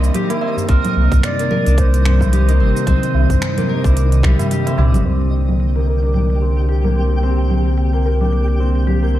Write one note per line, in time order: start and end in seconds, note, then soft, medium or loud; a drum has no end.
0.00 0.10 C2 medium
0.00 0.65 D#3 medium
0.00 0.65 G3 medium
0.00 0.30 A#3 medium
0.00 2.83 A#3 medium
0.00 0.41 C4 medium
0.00 1.66 D4 medium
0.00 5.06 D#4 medium
0.00 0.14 G4 medium
0.00 1.45 A#4 medium
0.00 5.07 D#7 medium
0.00 tabla na medium
0.00 tabla tin soft
0.00 shaker medium
0.14 2.32 G4 medium
0.14 closed hi-hat medium
0.14 low conga medium
0.14 shaker medium
0.30 1.39 A#3 medium
0.30 closed hi-hat soft
0.30 tabla na medium
0.30 shaker soft
0.41 0.68 C4 medium
0.41 tabla na medium
0.41 tabla tin medium
0.57 tabla ge medium
0.57 shaker medium
0.68 0.81 C2 medium
0.68 5.01 C3 medium
0.68 5.01 D#3 medium
0.68 5.01 G3 medium
0.68 2.05 C4 loud
0.68 1.26 A#4 loud
0.68 kick loud
0.68 closed hi-hat medium
0.68 shaker soft
0.85 closed hi-hat soft
0.85 low conga medium
0.85 shaker soft
0.96 1.08 C2 medium
0.96 tabla tin medium
1.11 1.21 C2 medium
1.11 kick loud
1.11 closed hi-hat soft
1.11 tabla ge medium
1.11 shaker medium
1.23 1.80 D5 loud
1.23 finger snap medium
1.23 closed hi-hat medium
1.23 shaker medium
1.39 2.48 A#3 medium
1.39 closed hi-hat soft
1.39 shaker soft
1.51 3.63 A#4 medium
1.51 low conga medium
1.66 2.61 C2 loud
1.66 3.84 D4 medium
1.66 closed hi-hat soft
1.66 shaker medium
1.78 4.51 C5 loud
1.78 kick loud
1.78 closed hi-hat medium
1.78 shaker soft
1.94 closed hi-hat soft
1.94 shaker soft
2.05 2.60 C4 medium
2.05 finger snap medium
2.05 tabla ge medium
2.21 kick medium
2.21 tabla na medium
2.21 low conga medium
2.21 shaker medium
2.32 4.23 G4 medium
2.32 closed hi-hat medium
2.32 shaker medium
2.48 3.57 A#3 medium
2.48 closed hi-hat soft
2.48 shaker soft
2.60 2.72 G1 medium
2.60 2.87 C4 medium
2.77 shaker medium
2.87 2.99 C2 loud
2.87 5.03 C4 medium
2.87 4.67 C4 loud
2.87 kick loud
2.87 closed hi-hat medium
2.87 low conga medium
2.87 shaker medium
3.03 closed hi-hat soft
3.03 shaker soft
3.14 3.26 C2 medium
3.14 tabla tin medium
3.30 3.39 C2 medium
3.30 kick medium
3.30 closed hi-hat soft
3.30 tabla ge medium
3.30 shaker medium
3.42 finger snap medium
3.42 closed hi-hat medium
3.42 shaker soft
3.57 5.75 A#3 medium
3.57 closed hi-hat soft
3.57 tabla tin soft
3.57 low conga medium
3.57 shaker soft
3.69 5.81 A#4 medium
3.84 4.23 C2 loud
3.84 4.78 D4 medium
3.84 kick loud
3.84 closed hi-hat soft
3.84 tabla na medium
3.84 shaker medium
3.97 closed hi-hat medium
3.97 shaker medium
4.12 closed hi-hat soft
4.12 shaker soft
4.23 4.36 C2 loud
4.23 4.51 G4 medium
4.23 finger snap medium
4.23 kick loud
4.23 tabla na medium
4.23 low conga medium
4.39 5.10 G3 medium
4.39 closed hi-hat soft
4.39 tabla na medium
4.39 tabla tin soft
4.39 tabla ge medium
4.39 shaker medium
4.51 6.68 G4 medium
4.51 closed hi-hat medium
4.51 shaker medium
4.66 5.05 C4 medium
4.66 closed hi-hat soft
4.66 high tom medium
4.66 tabla na medium
4.66 shaker soft
4.78 4.95 C2 medium
4.78 6.02 D4 medium
4.78 mid tom medium
4.78 tabla na medium
4.78 tabla tin medium
4.93 5.03 G1 loud
4.93 closed hi-hat soft
4.93 mid tom medium
4.93 tabla ge medium
4.93 low conga medium
4.93 shaker medium
5.05 9.20 C2 medium
5.05 9.20 D3 medium
5.05 9.20 G3 medium
5.05 9.20 A#3 medium
5.05 6.41 C4 medium
5.05 9.20 G4 medium
5.05 9.20 G5 medium
5.05 closed hi-hat medium
5.21 closed hi-hat soft
5.48 closed hi-hat soft
5.48 low conga medium
5.60 closed hi-hat medium
5.76 6.84 A#3 medium
5.76 closed hi-hat soft
5.87 7.99 A#4 medium
6.02 8.20 D4 medium
6.02 closed hi-hat soft
6.14 closed hi-hat medium
6.14 low conga medium
6.30 closed hi-hat soft
6.42 6.95 C4 medium
6.57 closed hi-hat soft
6.69 8.86 G4 medium
6.69 closed hi-hat medium
6.84 7.93 A#3 medium
6.84 closed hi-hat soft
6.84 low conga medium
6.96 7.23 C4 medium
7.23 8.59 C4 medium
7.23 closed hi-hat medium
7.39 closed hi-hat soft
7.50 low conga medium
7.66 closed hi-hat soft
7.78 closed hi-hat medium
7.93 9.02 A#3 medium
7.93 closed hi-hat soft
8.05 9.20 A#4 medium
8.21 9.20 D4 medium
8.21 closed hi-hat soft
8.21 low conga medium
8.32 closed hi-hat medium
8.48 closed hi-hat soft
8.60 9.14 C4 medium
8.75 closed hi-hat soft
8.87 9.20 G4 medium
8.87 closed hi-hat medium
8.87 low conga medium
9.03 9.20 A#3 medium
9.03 closed hi-hat soft
9.14 9.20 C4 medium